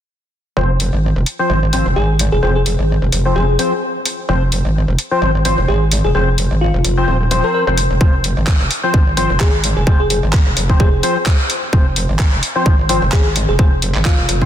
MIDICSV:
0, 0, Header, 1, 5, 480
1, 0, Start_track
1, 0, Key_signature, -4, "minor"
1, 0, Tempo, 465116
1, 585, Time_signature, 4, 2, 24, 8
1, 14918, End_track
2, 0, Start_track
2, 0, Title_t, "FM electric piano"
2, 0, Program_c, 0, 5
2, 2025, Note_on_c, 0, 68, 84
2, 2191, Note_off_c, 0, 68, 0
2, 2397, Note_on_c, 0, 68, 83
2, 2466, Note_off_c, 0, 68, 0
2, 2505, Note_on_c, 0, 68, 65
2, 2590, Note_off_c, 0, 68, 0
2, 2637, Note_on_c, 0, 68, 77
2, 2706, Note_off_c, 0, 68, 0
2, 2744, Note_on_c, 0, 68, 69
2, 2830, Note_off_c, 0, 68, 0
2, 3464, Note_on_c, 0, 68, 76
2, 3945, Note_off_c, 0, 68, 0
2, 5865, Note_on_c, 0, 68, 86
2, 6031, Note_off_c, 0, 68, 0
2, 6237, Note_on_c, 0, 68, 80
2, 6306, Note_off_c, 0, 68, 0
2, 6345, Note_on_c, 0, 68, 67
2, 6430, Note_off_c, 0, 68, 0
2, 6824, Note_on_c, 0, 65, 80
2, 7304, Note_off_c, 0, 65, 0
2, 7678, Note_on_c, 0, 70, 80
2, 7763, Note_off_c, 0, 70, 0
2, 7784, Note_on_c, 0, 70, 84
2, 7870, Note_off_c, 0, 70, 0
2, 7918, Note_on_c, 0, 70, 66
2, 7986, Note_off_c, 0, 70, 0
2, 9705, Note_on_c, 0, 68, 88
2, 9871, Note_off_c, 0, 68, 0
2, 10078, Note_on_c, 0, 68, 80
2, 10146, Note_off_c, 0, 68, 0
2, 10186, Note_on_c, 0, 68, 69
2, 10271, Note_off_c, 0, 68, 0
2, 10319, Note_on_c, 0, 68, 79
2, 10387, Note_off_c, 0, 68, 0
2, 10425, Note_on_c, 0, 68, 69
2, 10510, Note_off_c, 0, 68, 0
2, 11145, Note_on_c, 0, 68, 81
2, 11625, Note_off_c, 0, 68, 0
2, 13544, Note_on_c, 0, 68, 94
2, 13710, Note_off_c, 0, 68, 0
2, 13918, Note_on_c, 0, 68, 85
2, 13986, Note_off_c, 0, 68, 0
2, 14024, Note_on_c, 0, 68, 72
2, 14110, Note_off_c, 0, 68, 0
2, 14505, Note_on_c, 0, 65, 86
2, 14918, Note_off_c, 0, 65, 0
2, 14918, End_track
3, 0, Start_track
3, 0, Title_t, "Synth stab"
3, 0, Program_c, 1, 62
3, 585, Note_on_c, 1, 53, 68
3, 585, Note_on_c, 1, 60, 64
3, 585, Note_on_c, 1, 72, 74
3, 725, Note_off_c, 1, 53, 0
3, 725, Note_off_c, 1, 60, 0
3, 725, Note_off_c, 1, 72, 0
3, 1438, Note_on_c, 1, 53, 79
3, 1438, Note_on_c, 1, 60, 68
3, 1438, Note_on_c, 1, 72, 85
3, 1638, Note_off_c, 1, 53, 0
3, 1638, Note_off_c, 1, 60, 0
3, 1638, Note_off_c, 1, 72, 0
3, 1784, Note_on_c, 1, 72, 106
3, 1785, Note_on_c, 1, 53, 98
3, 1785, Note_on_c, 1, 60, 90
3, 1925, Note_off_c, 1, 53, 0
3, 1925, Note_off_c, 1, 60, 0
3, 1925, Note_off_c, 1, 72, 0
3, 2504, Note_on_c, 1, 53, 70
3, 2504, Note_on_c, 1, 60, 64
3, 2504, Note_on_c, 1, 72, 72
3, 2645, Note_off_c, 1, 53, 0
3, 2645, Note_off_c, 1, 60, 0
3, 2645, Note_off_c, 1, 72, 0
3, 3358, Note_on_c, 1, 53, 78
3, 3358, Note_on_c, 1, 60, 75
3, 3358, Note_on_c, 1, 72, 87
3, 3558, Note_off_c, 1, 53, 0
3, 3558, Note_off_c, 1, 60, 0
3, 3558, Note_off_c, 1, 72, 0
3, 3704, Note_on_c, 1, 53, 100
3, 3704, Note_on_c, 1, 60, 93
3, 3704, Note_on_c, 1, 72, 108
3, 3845, Note_off_c, 1, 53, 0
3, 3845, Note_off_c, 1, 60, 0
3, 3845, Note_off_c, 1, 72, 0
3, 4424, Note_on_c, 1, 53, 66
3, 4425, Note_on_c, 1, 60, 63
3, 4425, Note_on_c, 1, 72, 75
3, 4565, Note_off_c, 1, 53, 0
3, 4565, Note_off_c, 1, 60, 0
3, 4565, Note_off_c, 1, 72, 0
3, 5278, Note_on_c, 1, 53, 82
3, 5278, Note_on_c, 1, 60, 72
3, 5278, Note_on_c, 1, 72, 89
3, 5478, Note_off_c, 1, 53, 0
3, 5478, Note_off_c, 1, 60, 0
3, 5478, Note_off_c, 1, 72, 0
3, 5625, Note_on_c, 1, 53, 100
3, 5625, Note_on_c, 1, 60, 87
3, 5625, Note_on_c, 1, 72, 113
3, 5765, Note_off_c, 1, 53, 0
3, 5765, Note_off_c, 1, 60, 0
3, 5765, Note_off_c, 1, 72, 0
3, 6345, Note_on_c, 1, 53, 70
3, 6345, Note_on_c, 1, 60, 63
3, 6345, Note_on_c, 1, 72, 74
3, 6485, Note_off_c, 1, 53, 0
3, 6485, Note_off_c, 1, 60, 0
3, 6485, Note_off_c, 1, 72, 0
3, 7198, Note_on_c, 1, 53, 79
3, 7198, Note_on_c, 1, 60, 75
3, 7198, Note_on_c, 1, 72, 91
3, 7398, Note_off_c, 1, 53, 0
3, 7398, Note_off_c, 1, 60, 0
3, 7398, Note_off_c, 1, 72, 0
3, 7544, Note_on_c, 1, 53, 97
3, 7545, Note_on_c, 1, 60, 85
3, 7545, Note_on_c, 1, 72, 109
3, 7886, Note_off_c, 1, 53, 0
3, 7886, Note_off_c, 1, 60, 0
3, 7886, Note_off_c, 1, 72, 0
3, 7918, Note_on_c, 1, 53, 92
3, 7918, Note_on_c, 1, 60, 81
3, 7918, Note_on_c, 1, 72, 100
3, 8033, Note_off_c, 1, 53, 0
3, 8033, Note_off_c, 1, 60, 0
3, 8033, Note_off_c, 1, 72, 0
3, 8265, Note_on_c, 1, 53, 68
3, 8265, Note_on_c, 1, 60, 63
3, 8265, Note_on_c, 1, 72, 77
3, 8405, Note_off_c, 1, 53, 0
3, 8405, Note_off_c, 1, 60, 0
3, 8405, Note_off_c, 1, 72, 0
3, 9118, Note_on_c, 1, 53, 84
3, 9118, Note_on_c, 1, 60, 73
3, 9118, Note_on_c, 1, 72, 87
3, 9318, Note_off_c, 1, 53, 0
3, 9318, Note_off_c, 1, 60, 0
3, 9318, Note_off_c, 1, 72, 0
3, 9464, Note_on_c, 1, 53, 102
3, 9464, Note_on_c, 1, 60, 90
3, 9464, Note_on_c, 1, 72, 110
3, 9605, Note_off_c, 1, 53, 0
3, 9605, Note_off_c, 1, 60, 0
3, 9605, Note_off_c, 1, 72, 0
3, 10185, Note_on_c, 1, 53, 72
3, 10185, Note_on_c, 1, 60, 64
3, 10185, Note_on_c, 1, 72, 78
3, 10325, Note_off_c, 1, 53, 0
3, 10325, Note_off_c, 1, 60, 0
3, 10325, Note_off_c, 1, 72, 0
3, 11038, Note_on_c, 1, 53, 82
3, 11038, Note_on_c, 1, 60, 71
3, 11038, Note_on_c, 1, 72, 89
3, 11238, Note_off_c, 1, 53, 0
3, 11238, Note_off_c, 1, 60, 0
3, 11238, Note_off_c, 1, 72, 0
3, 11385, Note_on_c, 1, 53, 102
3, 11385, Note_on_c, 1, 60, 92
3, 11385, Note_on_c, 1, 72, 111
3, 11525, Note_off_c, 1, 53, 0
3, 11525, Note_off_c, 1, 60, 0
3, 11525, Note_off_c, 1, 72, 0
3, 12105, Note_on_c, 1, 53, 70
3, 12105, Note_on_c, 1, 60, 65
3, 12105, Note_on_c, 1, 72, 75
3, 12245, Note_off_c, 1, 53, 0
3, 12245, Note_off_c, 1, 60, 0
3, 12245, Note_off_c, 1, 72, 0
3, 12958, Note_on_c, 1, 53, 78
3, 12958, Note_on_c, 1, 60, 75
3, 12958, Note_on_c, 1, 72, 92
3, 13158, Note_off_c, 1, 53, 0
3, 13158, Note_off_c, 1, 60, 0
3, 13158, Note_off_c, 1, 72, 0
3, 13304, Note_on_c, 1, 53, 104
3, 13304, Note_on_c, 1, 60, 96
3, 13304, Note_on_c, 1, 72, 113
3, 13444, Note_off_c, 1, 53, 0
3, 13444, Note_off_c, 1, 60, 0
3, 13445, Note_off_c, 1, 72, 0
3, 14025, Note_on_c, 1, 53, 72
3, 14025, Note_on_c, 1, 60, 65
3, 14025, Note_on_c, 1, 72, 81
3, 14165, Note_off_c, 1, 53, 0
3, 14165, Note_off_c, 1, 60, 0
3, 14165, Note_off_c, 1, 72, 0
3, 14878, Note_on_c, 1, 53, 76
3, 14878, Note_on_c, 1, 60, 74
3, 14878, Note_on_c, 1, 72, 91
3, 14918, Note_off_c, 1, 53, 0
3, 14918, Note_off_c, 1, 60, 0
3, 14918, Note_off_c, 1, 72, 0
3, 14918, End_track
4, 0, Start_track
4, 0, Title_t, "Wobble bass"
4, 0, Program_c, 2, 39
4, 585, Note_on_c, 2, 29, 94
4, 937, Note_off_c, 2, 29, 0
4, 958, Note_on_c, 2, 32, 93
4, 1177, Note_off_c, 2, 32, 0
4, 1198, Note_on_c, 2, 29, 89
4, 1288, Note_off_c, 2, 29, 0
4, 1545, Note_on_c, 2, 32, 96
4, 1897, Note_off_c, 2, 32, 0
4, 1918, Note_on_c, 2, 29, 96
4, 2008, Note_off_c, 2, 29, 0
4, 2024, Note_on_c, 2, 32, 87
4, 2376, Note_off_c, 2, 32, 0
4, 2398, Note_on_c, 2, 29, 98
4, 2488, Note_off_c, 2, 29, 0
4, 2504, Note_on_c, 2, 29, 91
4, 2856, Note_off_c, 2, 29, 0
4, 2878, Note_on_c, 2, 32, 90
4, 3096, Note_off_c, 2, 32, 0
4, 3118, Note_on_c, 2, 29, 94
4, 3207, Note_off_c, 2, 29, 0
4, 3225, Note_on_c, 2, 29, 93
4, 3448, Note_off_c, 2, 29, 0
4, 3465, Note_on_c, 2, 29, 97
4, 3688, Note_off_c, 2, 29, 0
4, 4425, Note_on_c, 2, 29, 92
4, 4777, Note_off_c, 2, 29, 0
4, 4798, Note_on_c, 2, 32, 95
4, 5017, Note_off_c, 2, 32, 0
4, 5038, Note_on_c, 2, 29, 93
4, 5128, Note_off_c, 2, 29, 0
4, 5385, Note_on_c, 2, 32, 96
4, 5737, Note_off_c, 2, 32, 0
4, 5758, Note_on_c, 2, 29, 93
4, 5848, Note_off_c, 2, 29, 0
4, 5865, Note_on_c, 2, 32, 92
4, 6217, Note_off_c, 2, 32, 0
4, 6237, Note_on_c, 2, 29, 90
4, 6327, Note_off_c, 2, 29, 0
4, 6344, Note_on_c, 2, 29, 98
4, 6696, Note_off_c, 2, 29, 0
4, 6717, Note_on_c, 2, 32, 94
4, 6936, Note_off_c, 2, 32, 0
4, 6957, Note_on_c, 2, 29, 94
4, 7047, Note_off_c, 2, 29, 0
4, 7065, Note_on_c, 2, 29, 92
4, 7288, Note_off_c, 2, 29, 0
4, 7305, Note_on_c, 2, 27, 94
4, 7657, Note_off_c, 2, 27, 0
4, 7918, Note_on_c, 2, 29, 96
4, 8137, Note_off_c, 2, 29, 0
4, 8158, Note_on_c, 2, 29, 99
4, 8248, Note_off_c, 2, 29, 0
4, 8265, Note_on_c, 2, 29, 90
4, 8617, Note_off_c, 2, 29, 0
4, 8638, Note_on_c, 2, 32, 90
4, 8857, Note_off_c, 2, 32, 0
4, 8878, Note_on_c, 2, 29, 91
4, 8967, Note_off_c, 2, 29, 0
4, 9225, Note_on_c, 2, 32, 93
4, 9577, Note_off_c, 2, 32, 0
4, 9598, Note_on_c, 2, 29, 94
4, 9688, Note_off_c, 2, 29, 0
4, 9705, Note_on_c, 2, 32, 91
4, 10057, Note_off_c, 2, 32, 0
4, 10079, Note_on_c, 2, 29, 90
4, 10168, Note_off_c, 2, 29, 0
4, 10185, Note_on_c, 2, 29, 91
4, 10537, Note_off_c, 2, 29, 0
4, 10559, Note_on_c, 2, 32, 89
4, 10777, Note_off_c, 2, 32, 0
4, 10798, Note_on_c, 2, 29, 98
4, 10888, Note_off_c, 2, 29, 0
4, 10905, Note_on_c, 2, 29, 94
4, 11128, Note_off_c, 2, 29, 0
4, 11145, Note_on_c, 2, 29, 97
4, 11368, Note_off_c, 2, 29, 0
4, 12105, Note_on_c, 2, 29, 93
4, 12457, Note_off_c, 2, 29, 0
4, 12479, Note_on_c, 2, 32, 92
4, 12697, Note_off_c, 2, 32, 0
4, 12719, Note_on_c, 2, 29, 97
4, 12808, Note_off_c, 2, 29, 0
4, 13065, Note_on_c, 2, 32, 94
4, 13417, Note_off_c, 2, 32, 0
4, 13438, Note_on_c, 2, 29, 95
4, 13528, Note_off_c, 2, 29, 0
4, 13544, Note_on_c, 2, 32, 94
4, 13896, Note_off_c, 2, 32, 0
4, 13918, Note_on_c, 2, 29, 92
4, 14008, Note_off_c, 2, 29, 0
4, 14024, Note_on_c, 2, 29, 99
4, 14376, Note_off_c, 2, 29, 0
4, 14398, Note_on_c, 2, 32, 94
4, 14617, Note_off_c, 2, 32, 0
4, 14638, Note_on_c, 2, 29, 94
4, 14728, Note_off_c, 2, 29, 0
4, 14745, Note_on_c, 2, 29, 100
4, 14918, Note_off_c, 2, 29, 0
4, 14918, End_track
5, 0, Start_track
5, 0, Title_t, "Drums"
5, 824, Note_on_c, 9, 46, 92
5, 928, Note_off_c, 9, 46, 0
5, 1304, Note_on_c, 9, 46, 82
5, 1408, Note_off_c, 9, 46, 0
5, 1784, Note_on_c, 9, 46, 92
5, 1887, Note_off_c, 9, 46, 0
5, 2264, Note_on_c, 9, 46, 80
5, 2368, Note_off_c, 9, 46, 0
5, 2745, Note_on_c, 9, 46, 98
5, 2848, Note_off_c, 9, 46, 0
5, 3225, Note_on_c, 9, 46, 84
5, 3328, Note_off_c, 9, 46, 0
5, 3705, Note_on_c, 9, 46, 97
5, 3808, Note_off_c, 9, 46, 0
5, 4185, Note_on_c, 9, 46, 90
5, 4288, Note_off_c, 9, 46, 0
5, 4665, Note_on_c, 9, 46, 96
5, 4768, Note_off_c, 9, 46, 0
5, 5145, Note_on_c, 9, 46, 87
5, 5248, Note_off_c, 9, 46, 0
5, 5625, Note_on_c, 9, 46, 103
5, 5728, Note_off_c, 9, 46, 0
5, 6104, Note_on_c, 9, 46, 89
5, 6207, Note_off_c, 9, 46, 0
5, 6584, Note_on_c, 9, 46, 100
5, 6687, Note_off_c, 9, 46, 0
5, 7064, Note_on_c, 9, 46, 86
5, 7168, Note_off_c, 9, 46, 0
5, 7544, Note_on_c, 9, 46, 96
5, 7648, Note_off_c, 9, 46, 0
5, 8024, Note_on_c, 9, 46, 88
5, 8127, Note_off_c, 9, 46, 0
5, 8264, Note_on_c, 9, 36, 109
5, 8368, Note_off_c, 9, 36, 0
5, 8504, Note_on_c, 9, 46, 98
5, 8608, Note_off_c, 9, 46, 0
5, 8739, Note_on_c, 9, 39, 98
5, 8744, Note_on_c, 9, 36, 106
5, 8842, Note_off_c, 9, 39, 0
5, 8848, Note_off_c, 9, 36, 0
5, 8985, Note_on_c, 9, 46, 79
5, 9088, Note_off_c, 9, 46, 0
5, 9225, Note_on_c, 9, 36, 108
5, 9328, Note_off_c, 9, 36, 0
5, 9465, Note_on_c, 9, 46, 96
5, 9568, Note_off_c, 9, 46, 0
5, 9700, Note_on_c, 9, 39, 107
5, 9705, Note_on_c, 9, 36, 110
5, 9803, Note_off_c, 9, 39, 0
5, 9808, Note_off_c, 9, 36, 0
5, 9945, Note_on_c, 9, 46, 81
5, 10048, Note_off_c, 9, 46, 0
5, 10185, Note_on_c, 9, 36, 106
5, 10288, Note_off_c, 9, 36, 0
5, 10425, Note_on_c, 9, 46, 94
5, 10528, Note_off_c, 9, 46, 0
5, 10659, Note_on_c, 9, 39, 94
5, 10665, Note_on_c, 9, 36, 103
5, 10762, Note_off_c, 9, 39, 0
5, 10768, Note_off_c, 9, 36, 0
5, 10905, Note_on_c, 9, 46, 80
5, 11009, Note_off_c, 9, 46, 0
5, 11038, Note_on_c, 9, 36, 52
5, 11141, Note_off_c, 9, 36, 0
5, 11145, Note_on_c, 9, 36, 103
5, 11248, Note_off_c, 9, 36, 0
5, 11385, Note_on_c, 9, 46, 98
5, 11488, Note_off_c, 9, 46, 0
5, 11619, Note_on_c, 9, 39, 105
5, 11625, Note_on_c, 9, 36, 106
5, 11722, Note_off_c, 9, 39, 0
5, 11728, Note_off_c, 9, 36, 0
5, 11865, Note_on_c, 9, 46, 82
5, 11968, Note_off_c, 9, 46, 0
5, 12105, Note_on_c, 9, 36, 101
5, 12208, Note_off_c, 9, 36, 0
5, 12345, Note_on_c, 9, 46, 95
5, 12448, Note_off_c, 9, 46, 0
5, 12579, Note_on_c, 9, 39, 106
5, 12584, Note_on_c, 9, 36, 101
5, 12683, Note_off_c, 9, 39, 0
5, 12688, Note_off_c, 9, 36, 0
5, 12825, Note_on_c, 9, 46, 78
5, 12929, Note_off_c, 9, 46, 0
5, 13064, Note_on_c, 9, 36, 107
5, 13168, Note_off_c, 9, 36, 0
5, 13305, Note_on_c, 9, 46, 92
5, 13408, Note_off_c, 9, 46, 0
5, 13539, Note_on_c, 9, 39, 110
5, 13544, Note_on_c, 9, 36, 106
5, 13642, Note_off_c, 9, 39, 0
5, 13647, Note_off_c, 9, 36, 0
5, 13785, Note_on_c, 9, 46, 85
5, 13888, Note_off_c, 9, 46, 0
5, 14024, Note_on_c, 9, 36, 107
5, 14127, Note_off_c, 9, 36, 0
5, 14265, Note_on_c, 9, 46, 101
5, 14368, Note_off_c, 9, 46, 0
5, 14393, Note_on_c, 9, 39, 36
5, 14496, Note_off_c, 9, 39, 0
5, 14500, Note_on_c, 9, 39, 106
5, 14504, Note_on_c, 9, 36, 109
5, 14603, Note_off_c, 9, 39, 0
5, 14607, Note_off_c, 9, 36, 0
5, 14745, Note_on_c, 9, 46, 82
5, 14848, Note_off_c, 9, 46, 0
5, 14877, Note_on_c, 9, 36, 54
5, 14918, Note_off_c, 9, 36, 0
5, 14918, End_track
0, 0, End_of_file